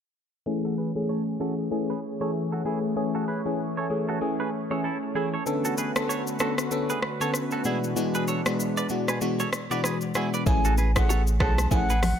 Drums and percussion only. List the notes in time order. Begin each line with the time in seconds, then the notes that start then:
5.46 shaker
5.65 shaker
5.78 shaker
5.96 cross-stick, shaker
6.10 shaker
6.27 shaker
6.39 cross-stick, shaker
6.58 cross-stick, shaker
6.71 shaker
6.90 shaker
7.02 cross-stick
7.21 shaker
7.34 cross-stick, shaker
7.51 shaker
7.64 shaker
7.84 shaker
7.96 shaker
8.15 shaker
8.28 shaker
8.46 cross-stick, shaker
8.60 shaker
8.77 shaker
8.89 shaker
9.08 cross-stick, shaker
9.21 shaker
9.40 shaker
9.53 cross-stick, shaker
9.71 shaker
9.84 cross-stick, shaker
10.01 shaker
10.14 cross-stick, shaker
10.34 shaker
10.46 kick, low conga, shaker
10.65 shaker
10.78 low bongo, shaker
10.96 kick, cross-stick, low bongo, shaker
11.10 high bongo, shaker
11.27 shaker
11.40 kick, cross-stick
11.58 cross-stick, high bongo, shaker
11.71 kick, low conga, shaker
11.90 shaker
12.03 cross-stick, open hi-hat, high bongo, low bongo, low conga, shaker